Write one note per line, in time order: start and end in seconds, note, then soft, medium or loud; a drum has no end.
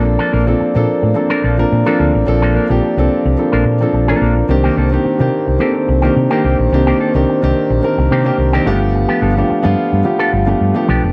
0.00 0.15 A#1 loud
0.00 0.36 F3 loud
0.00 0.37 A#3 medium
0.00 4.46 A#3 medium
0.00 0.37 C4 medium
0.00 0.37 D4 medium
0.00 4.46 F4 medium
0.00 0.37 A4 loud
0.00 4.46 D5 medium
0.05 muted clean electric guitar stroke soft
0.19 0.30 F3 medium
0.19 0.31 A#3 medium
0.19 0.32 D4 medium
0.19 0.33 A4 medium
0.32 0.52 A#1 loud
0.32 0.44 F3 medium
0.32 0.45 A#3 medium
0.32 0.45 D4 medium
0.32 0.45 A#4 medium
0.46 0.71 F3 medium
0.46 0.71 A#3 medium
0.46 0.71 C4 medium
0.46 0.71 D4 medium
0.46 0.71 A4 medium
0.46 muted clean electric guitar stroke soft
0.59 muted clean electric guitar stroke soft
0.59 muted fingered electric bass stroke soft
0.74 0.85 A#2 loud
0.74 1.10 F3 medium
0.74 1.10 A#3 medium
0.74 1.11 C4 medium
0.74 1.11 D4 medium
0.74 1.11 A4 loud
0.74 muted clean electric guitar stroke soft
1.02 1.12 A2 medium
1.02 muted clean electric guitar stroke soft
1.14 1.51 F3 medium
1.14 1.51 A#3 medium
1.14 1.52 C4 medium
1.14 1.52 D4 medium
1.14 1.52 A4 medium
1.14 muted clean electric guitar stroke soft
1.30 1.42 F3 medium
1.30 1.43 A#3 medium
1.30 1.44 D4 medium
1.30 1.44 A#4 loud
1.43 1.63 A#1 medium
1.43 1.56 F3 medium
1.43 1.56 A#3 medium
1.43 1.56 D4 medium
1.43 1.56 A4 medium
1.57 1.82 F3 medium
1.57 1.82 A#3 medium
1.57 1.82 C4 medium
1.57 1.82 D4 medium
1.57 1.83 A#4 loud
1.57 muted clean electric guitar stroke medium
1.72 1.82 A#2 loud
1.72 muted clean electric guitar stroke soft
1.86 2.22 F3 medium
1.86 1.98 F3 medium
1.86 2.22 A#3 medium
1.86 1.99 A#3 medium
1.86 2.22 C4 medium
1.86 1.99 D4 medium
1.86 2.22 D4 medium
1.86 1.99 A4 medium
1.86 2.22 A4 medium
1.99 2.10 D2 medium
1.99 2.11 F3 medium
1.99 2.12 A#3 medium
1.99 2.12 D4 medium
1.99 2.12 A4 medium
2.13 2.24 A1 medium
2.13 muted clean electric guitar stroke soft
2.27 2.56 A#1 loud
2.27 2.63 F3 medium
2.27 2.63 A#3 medium
2.27 2.63 C4 medium
2.27 2.64 D4 medium
2.27 2.64 A4 loud
2.27 muted clean electric guitar stroke soft
2.42 2.53 F3 medium
2.42 2.54 A#3 medium
2.42 2.54 D4 medium
2.42 2.56 A4 medium
2.54 2.67 F3 medium
2.54 2.67 A#3 medium
2.54 2.67 D4 medium
2.54 2.68 A#4 medium
2.69 2.79 A#1 medium
2.69 2.93 F3 medium
2.69 2.93 A#3 medium
2.69 2.93 C4 medium
2.69 2.93 D4 medium
2.69 2.94 G4 loud
2.69 muted clean electric guitar stroke medium
2.83 muted clean electric guitar stroke soft
2.97 3.06 C2 medium
2.97 3.33 F3 medium
2.97 3.33 A#3 medium
2.97 3.33 C4 medium
2.97 3.33 D4 medium
2.97 3.33 A4 loud
2.97 muted clean electric guitar stroke soft
3.25 3.34 C2 medium
3.25 muted clean electric guitar stroke soft
3.38 3.74 F3 medium
3.38 3.74 A#3 medium
3.38 3.75 C4 medium
3.38 3.75 D4 medium
3.38 3.75 A4 medium
3.38 muted clean electric guitar stroke soft
3.52 3.62 A#1 medium
3.52 3.65 F3 medium
3.52 3.65 A#3 medium
3.52 3.65 D4 medium
3.52 3.66 A#4 medium
3.65 3.85 A#2 medium
3.65 muted clean electric guitar stroke soft
3.81 4.04 F3 medium
3.81 4.05 A#3 medium
3.81 4.05 C4 medium
3.81 4.05 D4 medium
3.81 4.05 A4 medium
3.81 muted clean electric guitar stroke medium
3.93 4.12 A#1 medium
3.93 muted clean electric guitar stroke soft
4.08 4.44 F3 medium
4.08 4.19 F3 medium
4.08 4.44 A#3 medium
4.08 4.20 A#3 medium
4.08 4.44 C4 medium
4.08 4.21 D4 medium
4.08 4.44 D4 medium
4.08 4.21 A4 medium
4.08 4.45 A#4 medium
4.21 4.41 A#1 medium
4.21 4.33 F3 medium
4.21 4.34 A#3 medium
4.21 4.34 D4 medium
4.21 4.34 A4 medium
4.37 muted clean electric guitar stroke soft
4.49 4.68 C2 loud
4.49 4.85 D#3 medium
4.49 6.69 A#3 medium
4.49 4.86 A#3 medium
4.49 8.62 C4 medium
4.49 4.86 C4 medium
4.49 4.86 D4 medium
4.49 4.86 G4 loud
4.49 8.62 C5 medium
4.49 muted clean electric guitar stroke soft
4.64 4.75 D#3 medium
4.64 4.76 A#3 medium
4.64 4.77 C4 medium
4.64 4.78 G4 medium
4.77 4.96 C2 loud
4.77 4.89 D#3 medium
4.77 4.89 A#3 medium
4.77 4.90 C4 medium
4.77 4.90 A4 medium
4.91 5.16 D#3 medium
4.91 5.16 A#3 medium
4.91 5.16 C4 medium
4.91 5.16 D4 medium
4.91 5.16 G4 medium
4.91 muted clean electric guitar stroke soft
5.03 muted clean electric guitar stroke soft
5.03 muted fingered electric bass stroke soft
5.19 5.29 C3 loud
5.19 5.55 D#3 medium
5.19 5.55 A#3 medium
5.19 5.55 C4 medium
5.19 5.55 D4 medium
5.19 5.56 G4 loud
5.19 muted clean electric guitar stroke soft
5.47 5.56 C2 medium
5.47 muted clean electric guitar stroke soft
5.59 5.75 D#3 medium
5.59 5.96 D#3 medium
5.59 5.75 A#3 medium
5.59 5.96 A#3 medium
5.59 5.74 C4 medium
5.59 5.97 C4 medium
5.59 5.97 D4 medium
5.59 5.74 G4 medium
5.59 5.97 A4 medium
5.75 muted clean electric guitar stroke soft
5.88 6.08 C2 medium
5.88 muted clean electric guitar stroke soft
6.02 6.27 D#3 medium
6.02 6.14 D#3 soft
6.02 6.14 A#3 medium
6.02 6.27 A#3 medium
6.02 6.14 C4 medium
6.02 6.27 C4 medium
6.02 6.27 D4 medium
6.02 6.13 G4 medium
6.02 6.28 G4 medium
6.16 6.26 C3 medium
6.16 muted clean electric guitar stroke soft
6.30 6.66 D#3 medium
6.30 6.43 D#3 medium
6.30 6.66 A#3 medium
6.30 6.43 A#3 medium
6.30 6.44 C4 medium
6.30 6.66 C4 medium
6.30 6.67 D4 medium
6.30 6.44 G4 medium
6.30 6.67 G4 medium
6.44 6.54 C2 medium
6.44 6.56 D#3 medium
6.44 6.56 A#3 medium
6.44 6.57 C4 medium
6.44 6.57 G4 medium
6.59 6.68 A#1 loud
6.59 muted clean electric guitar stroke soft
6.72 6.91 C2 loud
6.72 7.08 D#3 medium
6.72 7.09 A#3 medium
6.72 7.09 C4 medium
6.72 7.09 D4 medium
6.72 7.09 G4 loud
6.72 8.64 A#4 medium
6.72 muted clean electric guitar stroke soft
6.87 6.98 D#3 medium
6.87 6.99 A#3 medium
6.87 6.99 C4 medium
6.87 7.00 G4 medium
6.99 7.12 D#3 medium
6.99 7.12 A#3 medium
6.99 7.12 C4 medium
6.99 7.12 A4 medium
7.14 7.24 C2 medium
7.14 7.38 D#3 medium
7.14 7.38 A#3 medium
7.14 7.38 C4 medium
7.14 7.38 D4 medium
7.14 7.39 G4 medium
7.14 muted clean electric guitar stroke medium
7.28 muted clean electric guitar stroke soft
7.42 7.52 C2 medium
7.42 7.77 D#3 medium
7.42 7.78 A#3 medium
7.42 7.78 C4 medium
7.42 7.78 D4 medium
7.42 7.78 G4 loud
7.42 muted clean electric guitar stroke soft
7.70 7.79 A#1 medium
7.70 muted clean electric guitar stroke soft
7.82 8.19 D#3 medium
7.82 8.19 A#3 medium
7.82 8.19 C4 medium
7.82 8.19 D4 medium
7.82 8.20 A#4 medium
7.82 muted clean electric guitar stroke soft
7.98 8.07 C2 medium
7.98 muted clean electric guitar stroke medium
8.11 8.30 C3 loud
8.11 8.26 D#3 medium
8.11 8.25 A#3 medium
8.11 8.25 C4 medium
8.11 8.24 G4 medium
8.24 8.49 D#3 medium
8.24 8.37 D#3 soft
8.24 8.49 A#3 medium
8.24 8.37 A#3 medium
8.24 8.49 C4 medium
8.24 8.36 C4 medium
8.24 8.49 D4 medium
8.24 8.36 G4 medium
8.24 8.49 G4 loud
8.38 8.57 C2 medium
8.38 muted clean electric guitar stroke soft
8.53 8.67 D#3 medium
8.53 8.66 D#3 medium
8.53 8.67 A#3 medium
8.53 8.66 A#3 medium
8.53 8.67 C4 loud
8.53 8.67 C4 medium
8.53 8.65 D4 medium
8.53 8.67 G4 loud
8.53 8.66 G4 loud
8.65 9.04 G1 loud
8.65 9.25 F3 medium
8.65 8.78 F3 medium
8.65 9.26 A3 medium
8.65 11.13 B3 medium
8.65 9.26 B3 medium
8.65 8.79 B3 medium
8.65 9.26 D4 medium
8.65 8.79 D4 medium
8.65 10.89 G4 medium
8.65 9.26 G4 loud
8.65 8.79 G4 medium
8.65 10.86 F5 medium
8.94 muted clean electric guitar stroke soft
9.08 9.20 F3 medium
9.08 9.20 B3 medium
9.08 9.21 D4 medium
9.08 9.22 G4 medium
9.21 9.41 G1 medium
9.21 9.34 F3 medium
9.21 9.34 B3 medium
9.21 9.34 D4 medium
9.21 9.34 A4 medium
9.36 9.60 F3 medium
9.36 9.60 A3 medium
9.36 9.61 B3 medium
9.36 9.61 D4 medium
9.36 9.61 G4 medium
9.36 muted clean electric guitar stroke soft
9.49 muted clean electric guitar stroke soft
9.49 muted fingered electric bass stroke soft
9.63 9.74 G2 medium
9.63 9.99 F3 loud
9.63 9.99 A3 medium
9.63 9.99 B3 medium
9.63 9.99 D4 medium
9.63 10.00 F4 loud
9.63 muted clean electric guitar stroke soft
9.92 10.02 G2 medium
9.92 muted clean electric guitar stroke soft
10.04 10.41 F3 medium
10.04 10.41 A3 medium
10.04 10.41 B3 medium
10.04 10.41 D4 medium
10.04 10.41 G4 medium
10.04 muted clean electric guitar stroke soft
10.19 10.31 F3 medium
10.19 10.32 B3 medium
10.19 10.32 D4 medium
10.19 10.33 A4 medium
10.32 10.52 G1 medium
10.32 muted clean electric guitar stroke soft
10.46 10.71 F3 medium
10.46 10.71 A3 medium
10.46 10.71 B3 medium
10.46 10.71 D4 medium
10.46 10.71 G4 medium
10.46 muted clean electric guitar stroke soft
10.61 10.71 G2 medium
10.74 11.10 F3 medium
10.74 11.10 A3 medium
10.74 11.10 B3 medium
10.74 11.11 D4 medium
10.74 11.11 G4 medium
10.74 muted clean electric guitar stroke soft
10.88 10.99 B1 medium
10.88 11.04 F3 medium
10.88 11.03 B3 medium
10.88 11.03 D4 medium
10.88 11.13 G4 medium
10.88 11.03 G4 medium
11.04 11.13 F1 medium
11.04 muted clean electric guitar stroke soft